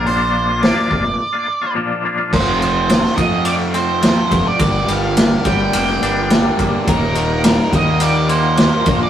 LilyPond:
<<
  \new Staff \with { instrumentName = "Lead electric guitar" } { \time 4/4 \key bes \mixolydian \tempo 4 = 106 c''4 d''2 r4 | \key ees \lydian c''8 c''4 ees''8 d''8 c''4~ c''16 d''16~ | d''8 f''4 g''8 g''4 r4 | bes'8 bes'4 ees''8 d''8 c''4~ c''16 d''16 | }
  \new Staff \with { instrumentName = "Analog synth pad" } { \time 4/4 \key bes \mixolydian << { r1 | \key ees \lydian r1 | r1 | <f'' bes''>1 | } \\ { r1 | r1 | r1 | <ees' g'>2.~ <ees' g'>8 <d' bes'>8 | } >> }
  \new Staff \with { instrumentName = "Clean electric guitar" } { \time 4/4 \key bes \mixolydian <bes, f bes d' f'>8. <bes d' f'>16 <bes, f bes d' f'>8 <f bes d' f'>8. <bes d' f'>8 <bes d' f'>16 <bes, f bes d' f'>8 <f bes d' f'>16 <bes d' f'>16 | \key ees \lydian f,8 f8 a8 f8 a8 c'8 f8 a8 | g,8 g8 bes8 g8 bes8 d'8 g8 bes8 | ees,8 ees8 g8 ees8 g8 bes8 ees8 bes,8 | }
  \new Staff \with { instrumentName = "Overdriven electric guitar" } { \clef bass \time 4/4 \key bes \mixolydian r1 | \key ees \lydian <f, c f a c' f'>4. <f, c f a c' f'>4. <f, c f a c' f'>4 | <g, d g bes d' g'>4. <g, d g bes d' g'>4. <g, d g bes d' g'>4 | <ees, bes, ees g bes ees'>4. <ees, bes, ees g bes ees'>4. <ees, bes, ees g bes ees'>8 <bes, f bes d' f'>8 | }
  \new Staff \with { instrumentName = "Fingered electric bass" } { \clef bass \time 4/4 \key bes \mixolydian bes,,4. f,,8 r2 | \key ees \lydian f,,4. f,2 f,,16 r16 | g,,8 g,,4 g,,8 f,,8 g,,4 g,,16 r16 | ees,,4. ees,2 bes,,16 r16 | }
  \new DrumStaff \with { instrumentName = "Drums" } \drummode { \time 4/4 hho4 <hho sn>8 bd8 r4 r4 | <cymc bd>8 cymr8 <cymr sn>16 sn16 <bd cymr>8 cymr8 cymr8 <cymr sn>8 <bd cymr>8 | <bd cymr>8 cymr8 <cymr sn>8 <bd cymr>8 cymr8 cymr8 <cymr sn>8 <bd cymr>8 | <bd cymr>8 cymr8 <cymr sn>8 <bd cymr>8 cymr8 cymr8 <cymr sn>8 <bd cymr>8 | }
>>